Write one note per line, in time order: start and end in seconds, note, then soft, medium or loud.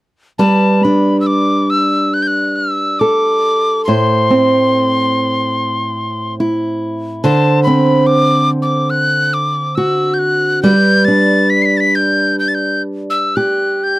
0.39 3.87 G3 soft
0.39 3.87 B4 soft
0.39 0.85 A5 soft
0.83 3.96 D4 soft
0.83 1.20 B5 medium
1.21 1.28 E6 soft
1.27 1.72 D6 medium
1.70 2.15 E6 medium
2.14 2.24 F#6 medium
2.22 2.29 G6 medium
2.27 2.57 F#6 medium
2.56 3.01 E6 medium
2.99 6.40 A4 soft
2.99 3.84 D6 medium
3.85 7.24 A2 medium
3.85 7.24 C5 soft
3.85 6.34 C6 medium
4.30 7.66 C4 soft
6.40 7.33 E4 soft
7.24 10.74 D3 medium
7.24 10.64 C5 soft
7.24 7.63 A5 medium
7.63 10.72 C4 soft
7.63 8.08 B5 medium
8.07 8.50 D6 medium
8.62 8.92 D6 medium
8.90 9.35 F#6 medium
9.34 9.77 D6 medium
9.75 10.72 F#4 soft
9.75 10.15 E6 medium
10.14 10.20 G6 soft
10.19 10.62 F#6 medium
10.63 13.99 G3 medium
10.63 13.99 B4 soft
10.63 11.06 G6 medium
11.05 13.99 D4 soft
11.05 11.51 A6 medium
11.50 11.63 B6 medium
11.62 11.79 B6 medium
11.62 11.65 C7 soft
11.77 11.81 A6 soft
11.77 11.97 B6 medium
11.95 12.39 G6 medium
12.39 12.50 G6 medium
12.48 12.56 A6 medium
12.55 12.82 G6 medium
13.10 13.38 E6 medium
13.36 13.99 G4 soft
13.36 13.85 F#6 medium
13.84 13.99 G6 medium